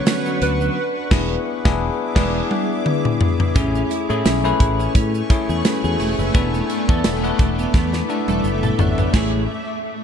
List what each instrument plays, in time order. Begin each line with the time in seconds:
Already playing: tine electric piano D3 B3 F#4 B4, clean electric guitar F#3 D4, ambient pad B4 F#5 C#6, soft synth lead C#5
0.06 clean electric guitar C#4, snare, closed hi-hat, tambourine, shaker
0.26 clean electric guitar F#3, shaker
0.42 fretless electric bass D2, clean electric guitar D4, soft synth lead B4, closed hi-hat
0.61 clean electric guitar F#3, shaker
0.76 ambient pad G#4 E5 D6
1.11 fretless electric bass E1, tine electric piano B3 D4 E4 G#4, kick, snare, crash
1.65 fretless electric bass E1, tine electric piano B3 D4 E4 G#4 B4, kick, snare
2.15 fretless electric bass E1, clean electric guitar G#3 D4, tine electric piano B3 D4 E4 G#4 B4, kick, snare, crash
2.51 high tom
2.86 mid tom
3.05 mid tom
3.21 floor tom
3.40 floor tom
3.55 fretless electric bass A1, tine electric piano A3 C#4 E4 G#4, ambient pad A3 G#5 C#6, clean electric guitar C#4, kick, closed hi-hat, shaker
3.75 clean electric guitar C#4, shaker
3.90 clean electric guitar E4, closed hi-hat, shaker
4.09 fretless electric bass A2, tine electric piano A3 C#4 E4 G#4, clean electric guitar G#4, shaker
4.25 fretless electric bass B1, clean electric guitar C#4, snare, closed hi-hat, tambourine, shaker
4.44 tine electric piano A3 C#4 E4 B4, clean electric guitar G#4, shaker
4.60 fretless electric bass A1, clean electric guitar E4, kick, closed hi-hat
4.79 clean electric guitar C#4, shaker
4.95 fretless electric bass A2, clean electric guitar C#4, kick, closed hi-hat, shaker
5.14 clean electric guitar C#4, shaker
5.30 tine electric piano A3 C#4 E4 G#4, clean electric guitar E4, kick, closed hi-hat, shaker
5.49 fretless electric bass E2, clean electric guitar G#4, shaker
5.65 clean electric guitar C#4, tine electric piano F#4 B4, snare, closed hi-hat, tambourine, shaker
5.84 fretless electric bass E2, clean electric guitar G#4, tine electric piano G#4 C#5, shaker
6.00 fretless electric bass E1, clean electric guitar E4, open hi-hat, shaker
6.19 fretless electric bass F#1, clean electric guitar C#4, tine electric piano B4 E5, shaker
6.34 fretless electric bass E1, tine electric piano B3 D4 E4 A4, clean electric guitar B3, ambient pad E5 D6, kick, closed hi-hat, shaker
6.54 clean electric guitar B3, shaker
6.70 clean electric guitar D4, closed hi-hat, shaker
6.88 fretless electric bass E2, tine electric piano B3 D4 E4 A4, clean electric guitar A4, kick, shaker
7.04 fretless electric bass E1, clean electric guitar B3, snare, closed hi-hat, tambourine, shaker
7.23 tine electric piano B3 D4 E4 B4, clean electric guitar A4, shaker
7.39 fretless electric bass E1, clean electric guitar D4, kick, closed hi-hat
7.59 clean electric guitar B3, shaker
7.74 fretless electric bass E2, clean electric guitar B3, kick, snare, shaker
7.93 clean electric guitar B3, snare, shaker
8.09 tine electric piano B3 D4 E4 A4, clean electric guitar D4, shaker
8.28 fretless electric bass E1, clean electric guitar A4, high tom, shaker
8.44 fretless electric bass F#1, clean electric guitar B3, tine electric piano A4 D5, shaker
8.63 clean electric guitar A4, mid tom, shaker
8.79 fretless electric bass G#1, clean electric guitar D4, tine electric piano C#5 F#5, floor tom, shaker
8.98 clean electric guitar B3, tine electric piano B4 E5, floor tom, shaker
9.13 fretless electric bass A1, clean electric guitar E3 A3 C#4 G#4, tine electric piano A3 C#4 E4 G#4, kick, snare, crash, shaker